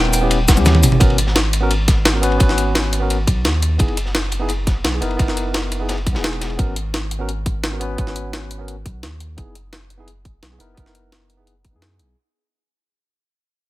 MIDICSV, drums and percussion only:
0, 0, Header, 1, 2, 480
1, 0, Start_track
1, 0, Key_signature, 5, "minor"
1, 0, Tempo, 348837
1, 1383, Time_signature, 4, 2, 24, 8
1, 18840, End_track
2, 0, Start_track
2, 0, Title_t, "Drums"
2, 65, Note_on_c, 9, 51, 49
2, 183, Note_off_c, 9, 51, 0
2, 183, Note_on_c, 9, 51, 71
2, 186, Note_on_c, 9, 46, 76
2, 186, Note_on_c, 9, 82, 61
2, 321, Note_off_c, 9, 51, 0
2, 323, Note_off_c, 9, 46, 0
2, 323, Note_off_c, 9, 82, 0
2, 421, Note_on_c, 9, 51, 91
2, 426, Note_on_c, 9, 42, 87
2, 558, Note_off_c, 9, 51, 0
2, 563, Note_off_c, 9, 42, 0
2, 665, Note_on_c, 9, 36, 106
2, 665, Note_on_c, 9, 38, 103
2, 666, Note_off_c, 9, 38, 0
2, 666, Note_on_c, 9, 38, 64
2, 666, Note_on_c, 9, 42, 102
2, 666, Note_on_c, 9, 82, 64
2, 667, Note_on_c, 9, 51, 89
2, 787, Note_off_c, 9, 82, 0
2, 787, Note_on_c, 9, 48, 59
2, 787, Note_on_c, 9, 82, 29
2, 803, Note_off_c, 9, 36, 0
2, 804, Note_off_c, 9, 38, 0
2, 804, Note_off_c, 9, 42, 0
2, 805, Note_off_c, 9, 51, 0
2, 904, Note_on_c, 9, 51, 84
2, 905, Note_on_c, 9, 38, 101
2, 906, Note_off_c, 9, 82, 0
2, 906, Note_on_c, 9, 42, 85
2, 906, Note_on_c, 9, 47, 82
2, 906, Note_on_c, 9, 82, 29
2, 924, Note_off_c, 9, 48, 0
2, 1028, Note_off_c, 9, 47, 0
2, 1028, Note_on_c, 9, 47, 75
2, 1041, Note_off_c, 9, 51, 0
2, 1043, Note_off_c, 9, 38, 0
2, 1044, Note_off_c, 9, 42, 0
2, 1044, Note_off_c, 9, 82, 0
2, 1148, Note_on_c, 9, 45, 93
2, 1148, Note_on_c, 9, 46, 75
2, 1148, Note_on_c, 9, 82, 62
2, 1150, Note_on_c, 9, 51, 63
2, 1166, Note_off_c, 9, 47, 0
2, 1267, Note_off_c, 9, 45, 0
2, 1267, Note_on_c, 9, 45, 91
2, 1286, Note_off_c, 9, 46, 0
2, 1286, Note_off_c, 9, 82, 0
2, 1288, Note_off_c, 9, 51, 0
2, 1379, Note_on_c, 9, 51, 80
2, 1386, Note_on_c, 9, 36, 114
2, 1388, Note_on_c, 9, 42, 78
2, 1405, Note_off_c, 9, 45, 0
2, 1513, Note_off_c, 9, 51, 0
2, 1513, Note_on_c, 9, 51, 46
2, 1524, Note_off_c, 9, 36, 0
2, 1526, Note_off_c, 9, 42, 0
2, 1628, Note_on_c, 9, 42, 91
2, 1631, Note_off_c, 9, 51, 0
2, 1631, Note_on_c, 9, 51, 68
2, 1744, Note_on_c, 9, 38, 51
2, 1765, Note_off_c, 9, 42, 0
2, 1768, Note_off_c, 9, 51, 0
2, 1863, Note_off_c, 9, 38, 0
2, 1863, Note_on_c, 9, 38, 104
2, 1865, Note_on_c, 9, 51, 82
2, 1867, Note_off_c, 9, 38, 0
2, 1867, Note_on_c, 9, 38, 113
2, 1867, Note_on_c, 9, 42, 80
2, 2002, Note_off_c, 9, 51, 0
2, 2005, Note_off_c, 9, 38, 0
2, 2005, Note_off_c, 9, 42, 0
2, 2107, Note_on_c, 9, 42, 89
2, 2110, Note_on_c, 9, 51, 70
2, 2245, Note_off_c, 9, 42, 0
2, 2248, Note_off_c, 9, 51, 0
2, 2348, Note_on_c, 9, 42, 85
2, 2348, Note_on_c, 9, 51, 92
2, 2485, Note_off_c, 9, 51, 0
2, 2486, Note_off_c, 9, 42, 0
2, 2586, Note_on_c, 9, 36, 105
2, 2586, Note_on_c, 9, 42, 96
2, 2587, Note_on_c, 9, 38, 53
2, 2587, Note_on_c, 9, 51, 66
2, 2724, Note_off_c, 9, 36, 0
2, 2724, Note_off_c, 9, 38, 0
2, 2724, Note_off_c, 9, 42, 0
2, 2724, Note_off_c, 9, 51, 0
2, 2824, Note_on_c, 9, 51, 89
2, 2825, Note_on_c, 9, 38, 114
2, 2827, Note_off_c, 9, 38, 0
2, 2827, Note_on_c, 9, 38, 114
2, 2827, Note_on_c, 9, 42, 80
2, 2961, Note_off_c, 9, 51, 0
2, 2964, Note_off_c, 9, 38, 0
2, 2964, Note_off_c, 9, 42, 0
2, 3066, Note_on_c, 9, 51, 62
2, 3069, Note_on_c, 9, 42, 91
2, 3188, Note_off_c, 9, 51, 0
2, 3188, Note_on_c, 9, 51, 42
2, 3206, Note_off_c, 9, 42, 0
2, 3299, Note_off_c, 9, 51, 0
2, 3299, Note_on_c, 9, 51, 79
2, 3306, Note_on_c, 9, 36, 118
2, 3308, Note_on_c, 9, 42, 78
2, 3430, Note_on_c, 9, 38, 38
2, 3436, Note_off_c, 9, 51, 0
2, 3444, Note_off_c, 9, 36, 0
2, 3446, Note_off_c, 9, 42, 0
2, 3543, Note_on_c, 9, 51, 65
2, 3549, Note_on_c, 9, 42, 89
2, 3568, Note_off_c, 9, 38, 0
2, 3681, Note_off_c, 9, 51, 0
2, 3687, Note_off_c, 9, 42, 0
2, 3783, Note_on_c, 9, 38, 116
2, 3788, Note_off_c, 9, 38, 0
2, 3788, Note_on_c, 9, 38, 120
2, 3788, Note_on_c, 9, 42, 77
2, 3792, Note_on_c, 9, 51, 89
2, 3902, Note_off_c, 9, 51, 0
2, 3902, Note_on_c, 9, 51, 47
2, 3926, Note_off_c, 9, 38, 0
2, 3926, Note_off_c, 9, 42, 0
2, 4027, Note_off_c, 9, 51, 0
2, 4027, Note_on_c, 9, 51, 68
2, 4029, Note_on_c, 9, 42, 88
2, 4164, Note_off_c, 9, 51, 0
2, 4167, Note_off_c, 9, 42, 0
2, 4270, Note_on_c, 9, 42, 78
2, 4270, Note_on_c, 9, 51, 78
2, 4407, Note_off_c, 9, 42, 0
2, 4407, Note_off_c, 9, 51, 0
2, 4505, Note_on_c, 9, 36, 108
2, 4505, Note_on_c, 9, 51, 74
2, 4508, Note_on_c, 9, 42, 93
2, 4642, Note_off_c, 9, 36, 0
2, 4642, Note_off_c, 9, 51, 0
2, 4645, Note_off_c, 9, 42, 0
2, 4742, Note_on_c, 9, 51, 87
2, 4745, Note_on_c, 9, 38, 105
2, 4747, Note_off_c, 9, 38, 0
2, 4747, Note_on_c, 9, 38, 122
2, 4747, Note_on_c, 9, 42, 77
2, 4880, Note_off_c, 9, 51, 0
2, 4884, Note_off_c, 9, 38, 0
2, 4884, Note_off_c, 9, 42, 0
2, 4983, Note_on_c, 9, 51, 63
2, 4988, Note_on_c, 9, 42, 90
2, 5121, Note_off_c, 9, 51, 0
2, 5126, Note_off_c, 9, 42, 0
2, 5216, Note_on_c, 9, 51, 77
2, 5225, Note_on_c, 9, 36, 117
2, 5227, Note_on_c, 9, 42, 75
2, 5340, Note_off_c, 9, 51, 0
2, 5340, Note_on_c, 9, 51, 41
2, 5363, Note_off_c, 9, 36, 0
2, 5365, Note_off_c, 9, 42, 0
2, 5463, Note_off_c, 9, 51, 0
2, 5463, Note_on_c, 9, 51, 74
2, 5467, Note_on_c, 9, 42, 85
2, 5581, Note_on_c, 9, 38, 43
2, 5601, Note_off_c, 9, 51, 0
2, 5604, Note_off_c, 9, 42, 0
2, 5706, Note_off_c, 9, 38, 0
2, 5706, Note_on_c, 9, 38, 101
2, 5706, Note_on_c, 9, 42, 73
2, 5708, Note_on_c, 9, 51, 86
2, 5844, Note_off_c, 9, 38, 0
2, 5844, Note_off_c, 9, 42, 0
2, 5845, Note_off_c, 9, 51, 0
2, 5939, Note_on_c, 9, 51, 69
2, 5946, Note_on_c, 9, 42, 83
2, 6076, Note_off_c, 9, 51, 0
2, 6084, Note_off_c, 9, 42, 0
2, 6172, Note_on_c, 9, 51, 79
2, 6187, Note_on_c, 9, 42, 77
2, 6310, Note_off_c, 9, 51, 0
2, 6325, Note_off_c, 9, 42, 0
2, 6425, Note_on_c, 9, 36, 110
2, 6428, Note_on_c, 9, 38, 49
2, 6428, Note_on_c, 9, 42, 87
2, 6429, Note_on_c, 9, 51, 62
2, 6563, Note_off_c, 9, 36, 0
2, 6565, Note_off_c, 9, 42, 0
2, 6566, Note_off_c, 9, 38, 0
2, 6566, Note_off_c, 9, 51, 0
2, 6663, Note_on_c, 9, 38, 103
2, 6668, Note_off_c, 9, 38, 0
2, 6668, Note_on_c, 9, 38, 124
2, 6668, Note_on_c, 9, 42, 72
2, 6669, Note_on_c, 9, 51, 82
2, 6805, Note_off_c, 9, 38, 0
2, 6805, Note_off_c, 9, 42, 0
2, 6807, Note_off_c, 9, 51, 0
2, 6904, Note_on_c, 9, 51, 69
2, 6906, Note_on_c, 9, 42, 86
2, 7025, Note_off_c, 9, 51, 0
2, 7025, Note_on_c, 9, 51, 41
2, 7044, Note_off_c, 9, 42, 0
2, 7144, Note_off_c, 9, 51, 0
2, 7144, Note_on_c, 9, 51, 83
2, 7146, Note_on_c, 9, 36, 119
2, 7149, Note_on_c, 9, 42, 73
2, 7269, Note_on_c, 9, 38, 37
2, 7282, Note_off_c, 9, 51, 0
2, 7283, Note_off_c, 9, 36, 0
2, 7286, Note_off_c, 9, 42, 0
2, 7388, Note_on_c, 9, 42, 83
2, 7392, Note_on_c, 9, 51, 66
2, 7407, Note_off_c, 9, 38, 0
2, 7526, Note_off_c, 9, 42, 0
2, 7529, Note_off_c, 9, 51, 0
2, 7622, Note_on_c, 9, 38, 102
2, 7625, Note_on_c, 9, 51, 86
2, 7628, Note_off_c, 9, 38, 0
2, 7628, Note_on_c, 9, 38, 116
2, 7628, Note_on_c, 9, 42, 72
2, 7746, Note_off_c, 9, 51, 0
2, 7746, Note_on_c, 9, 51, 42
2, 7765, Note_off_c, 9, 38, 0
2, 7765, Note_off_c, 9, 42, 0
2, 7865, Note_off_c, 9, 51, 0
2, 7865, Note_on_c, 9, 51, 68
2, 7868, Note_on_c, 9, 42, 83
2, 8002, Note_off_c, 9, 51, 0
2, 8006, Note_off_c, 9, 42, 0
2, 8099, Note_on_c, 9, 51, 81
2, 8108, Note_on_c, 9, 42, 75
2, 8110, Note_on_c, 9, 38, 99
2, 8224, Note_off_c, 9, 51, 0
2, 8224, Note_on_c, 9, 51, 37
2, 8246, Note_off_c, 9, 42, 0
2, 8247, Note_off_c, 9, 38, 0
2, 8345, Note_on_c, 9, 36, 104
2, 8347, Note_off_c, 9, 51, 0
2, 8347, Note_on_c, 9, 42, 84
2, 8347, Note_on_c, 9, 51, 63
2, 8461, Note_on_c, 9, 38, 103
2, 8473, Note_off_c, 9, 51, 0
2, 8473, Note_on_c, 9, 51, 68
2, 8483, Note_off_c, 9, 36, 0
2, 8485, Note_off_c, 9, 42, 0
2, 8588, Note_off_c, 9, 38, 0
2, 8588, Note_on_c, 9, 38, 117
2, 8588, Note_on_c, 9, 42, 72
2, 8610, Note_off_c, 9, 51, 0
2, 8705, Note_on_c, 9, 51, 58
2, 8725, Note_off_c, 9, 38, 0
2, 8725, Note_off_c, 9, 42, 0
2, 8822, Note_on_c, 9, 38, 95
2, 8826, Note_off_c, 9, 51, 0
2, 8826, Note_on_c, 9, 51, 77
2, 8828, Note_on_c, 9, 42, 82
2, 8942, Note_off_c, 9, 51, 0
2, 8942, Note_on_c, 9, 51, 34
2, 8959, Note_off_c, 9, 38, 0
2, 8965, Note_off_c, 9, 42, 0
2, 9066, Note_on_c, 9, 36, 112
2, 9067, Note_on_c, 9, 42, 73
2, 9080, Note_off_c, 9, 51, 0
2, 9203, Note_off_c, 9, 36, 0
2, 9205, Note_off_c, 9, 42, 0
2, 9306, Note_on_c, 9, 42, 83
2, 9444, Note_off_c, 9, 42, 0
2, 9548, Note_on_c, 9, 38, 112
2, 9548, Note_on_c, 9, 42, 71
2, 9686, Note_off_c, 9, 38, 0
2, 9686, Note_off_c, 9, 42, 0
2, 9787, Note_on_c, 9, 42, 79
2, 9924, Note_off_c, 9, 42, 0
2, 10027, Note_on_c, 9, 42, 75
2, 10164, Note_off_c, 9, 42, 0
2, 10265, Note_on_c, 9, 36, 100
2, 10265, Note_on_c, 9, 42, 84
2, 10403, Note_off_c, 9, 36, 0
2, 10403, Note_off_c, 9, 42, 0
2, 10506, Note_on_c, 9, 38, 113
2, 10506, Note_on_c, 9, 42, 70
2, 10644, Note_off_c, 9, 38, 0
2, 10644, Note_off_c, 9, 42, 0
2, 10745, Note_on_c, 9, 42, 82
2, 10882, Note_off_c, 9, 42, 0
2, 10984, Note_on_c, 9, 42, 73
2, 10985, Note_on_c, 9, 36, 107
2, 11106, Note_on_c, 9, 38, 34
2, 11122, Note_off_c, 9, 42, 0
2, 11123, Note_off_c, 9, 36, 0
2, 11225, Note_on_c, 9, 42, 87
2, 11244, Note_off_c, 9, 38, 0
2, 11363, Note_off_c, 9, 42, 0
2, 11467, Note_on_c, 9, 38, 106
2, 11467, Note_on_c, 9, 42, 73
2, 11605, Note_off_c, 9, 38, 0
2, 11605, Note_off_c, 9, 42, 0
2, 11707, Note_on_c, 9, 42, 87
2, 11844, Note_off_c, 9, 42, 0
2, 11946, Note_on_c, 9, 42, 77
2, 12084, Note_off_c, 9, 42, 0
2, 12186, Note_on_c, 9, 36, 96
2, 12187, Note_on_c, 9, 42, 89
2, 12323, Note_off_c, 9, 36, 0
2, 12325, Note_off_c, 9, 42, 0
2, 12427, Note_on_c, 9, 38, 107
2, 12427, Note_on_c, 9, 42, 75
2, 12565, Note_off_c, 9, 38, 0
2, 12565, Note_off_c, 9, 42, 0
2, 12665, Note_on_c, 9, 42, 84
2, 12803, Note_off_c, 9, 42, 0
2, 12904, Note_on_c, 9, 42, 77
2, 12906, Note_on_c, 9, 36, 103
2, 13041, Note_off_c, 9, 42, 0
2, 13044, Note_off_c, 9, 36, 0
2, 13146, Note_on_c, 9, 42, 92
2, 13284, Note_off_c, 9, 42, 0
2, 13385, Note_on_c, 9, 38, 105
2, 13385, Note_on_c, 9, 42, 76
2, 13522, Note_off_c, 9, 38, 0
2, 13522, Note_off_c, 9, 42, 0
2, 13626, Note_on_c, 9, 42, 86
2, 13764, Note_off_c, 9, 42, 0
2, 13866, Note_on_c, 9, 42, 81
2, 14004, Note_off_c, 9, 42, 0
2, 14106, Note_on_c, 9, 36, 96
2, 14107, Note_on_c, 9, 42, 89
2, 14243, Note_off_c, 9, 36, 0
2, 14244, Note_off_c, 9, 42, 0
2, 14347, Note_on_c, 9, 38, 105
2, 14347, Note_on_c, 9, 42, 75
2, 14485, Note_off_c, 9, 38, 0
2, 14485, Note_off_c, 9, 42, 0
2, 14586, Note_on_c, 9, 42, 86
2, 14724, Note_off_c, 9, 42, 0
2, 14825, Note_on_c, 9, 36, 105
2, 14826, Note_on_c, 9, 42, 75
2, 14947, Note_on_c, 9, 38, 33
2, 14963, Note_off_c, 9, 36, 0
2, 14963, Note_off_c, 9, 42, 0
2, 15066, Note_on_c, 9, 42, 92
2, 15084, Note_off_c, 9, 38, 0
2, 15203, Note_off_c, 9, 42, 0
2, 15306, Note_on_c, 9, 38, 106
2, 15306, Note_on_c, 9, 42, 76
2, 15443, Note_off_c, 9, 38, 0
2, 15443, Note_off_c, 9, 42, 0
2, 15545, Note_on_c, 9, 42, 87
2, 15683, Note_off_c, 9, 42, 0
2, 15785, Note_on_c, 9, 42, 82
2, 15922, Note_off_c, 9, 42, 0
2, 16024, Note_on_c, 9, 42, 92
2, 16025, Note_on_c, 9, 36, 93
2, 16162, Note_off_c, 9, 42, 0
2, 16163, Note_off_c, 9, 36, 0
2, 16266, Note_on_c, 9, 38, 106
2, 16266, Note_on_c, 9, 42, 75
2, 16404, Note_off_c, 9, 38, 0
2, 16404, Note_off_c, 9, 42, 0
2, 16504, Note_on_c, 9, 42, 89
2, 16642, Note_off_c, 9, 42, 0
2, 18840, End_track
0, 0, End_of_file